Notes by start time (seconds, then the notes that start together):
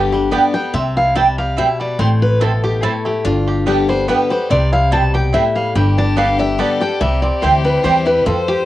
Already playing: G1 G2 D3 G3 B3 D4 G4
0.12 G3 B3 G4
0.31 D3 G3 B3 G4 D5 G5
0.54 G3 B3 G4 G5
0.73 C2 C3 C4 E5
0.97 E4 F5
1.15 C3 G3 C4 E4 C5 G5 A5
1.38 G4 F5
1.56 B2 C4 E4 C5 E5 G5
1.80 G3 D5
1.99 A1 A2 C4 C5
2.22 B4
2.40 B2 A3 C4 E4 A4 C5 A5
2.64 G4
2.82 A2 C4 E4 A4 C5 A5
3.05 A3 G4
3.25 G1 G2 D4 F4
3.48 G4
3.66 D3 G3 B3 D4 G4 D5 G5
3.89 G3 B3 G4 C5
4.08 D3 G3 B3 G4 B4 D5 G5
4.30 G3 B3 G4 C5
4.50 C2 C3 C4 D5
4.73 E4 F5
4.91 B2 G3 C4 E4 C5 G5 A5
5.14 G4 G5
5.33 A2 C4 E4 C5 E5 G5
5.55 G3 F5
5.75 G1 G2 G3 G4 G5
5.98 D4 A5
6.16 D3 G3 B3 G4 D5 F5 A5
6.39 B3 D4 G4 E5
6.58 D3 G3 B3 G4 A4 D5 A5
6.80 B3 D4 G4 G5
7.00 C2 C3 G3 G4 E5
7.22 C4 D5
7.42 D2 E3 G3 C4 E4 G4 C5 G5
7.64 G3 C4 E4 B4
7.83 E2 E3 G3 C4 E4 G4 C5 G5
8.06 G3 C4 E4 B4
8.26 F2 F4 A4 C5
8.48 G4